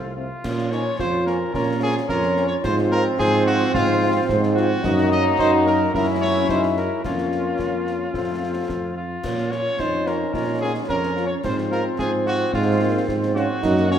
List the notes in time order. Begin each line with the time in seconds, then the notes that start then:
Already playing: C2 A3 C4 F4 A4 C5
0.16 F3 A3 C4 F4
0.43 A#2 F3 C#4 F4 C#5, concert bass drum, snare, crash
0.58 snare
0.71 F3 A#3 C#4 D#4 C#5, snare
0.99 F2 F4 C5, concert bass drum, snare
1.26 F3 A#3 C#4 A#4, snare
1.53 A#2 C#4 F4 A#4 C#5, concert bass drum, snare
1.81 F3 A#3 C#4 G#4
2.08 F2 C#4 F4 A#4 C#5, concert bass drum, snare
2.23 snare
2.36 F3 A#3 C#4, snare
2.47 C#5
2.63 G#2 F3 C4 F4 C5, concert bass drum, snare, crash
2.78 snare
2.92 F3 C4 F4 A#4, snare
3.18 G#2 C4 F4 G#4 C5, concert bass drum, snare
3.46 F3 C4 F4 F#4, snare
3.74 G#2 F4 C5, concert bass drum, snare
4.01 F3 C4 F4
4.29 G#2, concert bass drum, snare
4.43 snare
4.55 F3 C4 F4 F#4, snare
4.84 F#2 F#3 A#3 D#4 F#4 D#5, concert bass drum, snare, crash
4.98 snare
5.11 D#5, snare
5.39 F#2 D#4 C5, concert bass drum, snare
5.66 A#4, snare
5.93 F#2 F#3 C#4 E4 F#4 A#4 E5, concert bass drum, snare
6.21 C#5
6.48 F#2 G#3 D#4 C5, concert bass drum, snare
6.63 snare
6.77 A#4, snare
7.04 F2 A#3 C#4 F4 A#4 C#5, concert bass drum, snare, crash
7.18 snare
7.32 snare
7.59 F2, concert bass drum, snare
7.87 snare
8.13 F2 A3 C4 F4 A4 C5, concert bass drum, snare
8.69 F2, concert bass drum, snare
8.96 F4
9.24 A#2 F3 A#3 C#4 F4 C#5, concert bass drum, snare, crash
9.38 snare
9.51 A#3 C#4 F4 C#5, snare
9.78 F2 D#4 C5, concert bass drum, snare
10.05 A#3 C#4 F4 A#4, snare
10.33 A#2 F4 A#4 C#5, concert bass drum, snare
10.60 A#3 C#4 F4 G#4
10.88 F2 C#4 F4 A#4 C#5, concert bass drum, snare
11.03 snare
11.16 A#3 C#4 F4, snare
11.26 C#5
11.44 G#2 F3 C4 F4 C5, concert bass drum, snare, crash
11.58 snare
11.71 C4 F4 A#4, snare
11.99 G#2 C4 F4 G#4 C5, concert bass drum, snare
12.25 C4 F4 F#4, snare
12.53 G#2 G#3 F4 C5, concert bass drum, snare
12.80 A#3 C4 F4
13.08 G#2 C4, concert bass drum, snare
13.23 snare
13.36 C4 C#4 F4 F#4, snare
13.63 F#2 F#3 A#3 D#4 F#4 A#4, concert bass drum, snare, crash
13.77 snare
13.90 A#3 C#4 F#4 C#5, snare